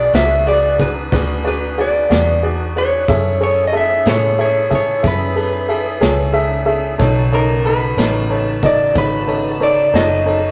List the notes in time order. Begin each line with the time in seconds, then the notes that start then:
Already playing: B1 D4 F#4 G#4 B4 D5
0.13 C#2 F#4 G#4 D5 E5, snare, ride
0.46 F#4 G#4 D5, ride
0.79 F#4 G#4 B4 D5, kick, ride
1.12 D2 F#4 G#4 B4 D5, kick, snare, ride
1.44 F#4 G#4 B4 D5, ride
1.78 F#4 G#4 D5, ride
2.10 E2 F#4 G#4 D5, snare, ride
2.43 F#4 G#4 D5, ride
2.76 F#4 G#4 C#5 D5, ride
3.06 F#2 C#4 E4 G#4 A4 E5, kick, ride
3.40 G#4 A4 C#5, ride
3.67 D#5
3.73 G#4 A4 E5, ride
3.77 E5
4.05 A2 G#4 A4 C#5 E5, snare, ride
4.38 G#4 A4 C#5 E5, ride
4.70 G#4 A4 E5, kick, ride
4.75 C#5
5.03 F#2 G#4 A4 E5, kick, ride
5.07 B4
5.35 G#4 A4 B4, ride
5.68 G#4 A4 E5, ride
6.01 C#2 G#4 A4 C#5, snare, ride
6.33 G#4 A4 E5, ride
6.66 G#4 A4 E5, ride
6.98 B1 C#3 D#4 F#4 A4 C#5 A5, kick, ride
7.32 D#4 A4 A#4 C#5, ride
7.64 D#4 A4 B4, ride
7.97 A1 D#4 A4 C#5, snare, ride
8.30 D#4 A4 C#5, ride
8.63 D#4 A4 D5 D#5, kick, ride
8.94 G#1 D#4 A4 B4 C#5, kick, ride
9.27 D#4 A4 C#5, ride
9.60 D#4 A4 C#5 D5, ride
9.93 F#1 D#4 A4 C#5 D#5, snare, ride
10.26 D#4 A4 C#5, ride